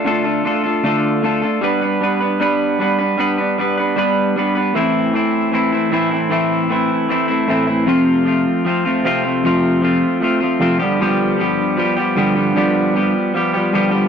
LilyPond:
\new Staff \with { instrumentName = "Overdriven electric guitar" } { \time 4/4 \key a \minor \tempo 4 = 154 <d a d' f' a'>8 <d' f' a'>8 <a d' f' a'>8 <d' f' a'>8 <d a d' f' a'>4 <a d' f' a'>8 <d' f' a'>8 | <g b d' b'>8 <b d' b'>8 <g b d' b'>8 <b d' b'>8 <g b d' b'>4 <g b d' b'>8 <b d' b'>8 | <g b d' b'>8 <b d' b'>8 <g b d' b'>8 <b d' b'>8 <g b d' b'>4 <g b d' b'>8 <b d' b'>8 | <a, e a c' e'>4 <e a c' e'>4 <e a c' e'>8 <a c' e'>8 <a, e a c' e'>8 <a c' e'>8 |
<a, e a c' e'>4 <e a c' e'>4 <e a c' e'>8 <a c' e'>8 <a, e a c' e'>8 <a c' e'>8 | <f, c f a c' f'>4 <f a c' f'>4 <f a c' f'>8 <f a c' f'>8 <f, c f a c' f'>8 <f a c' f'>8 | <f, c f a c' f'>4 <f a c' f'>4 <f a c' f'>8 <f a c' f'>8 <f, c f a c' f'>8 <g, d f g b g'>8 | <g, d f g b g'>4 <f g b g'>4 <f g b g'>8 <f g b g'>8 <g, d f g b g'>8 <f g b g'>8 |
<g, d f g b g'>4 <f g b g'>4 <f g b g'>8 <f g b g'>8 <g, d f g b g'>8 <f g b g'>8 | }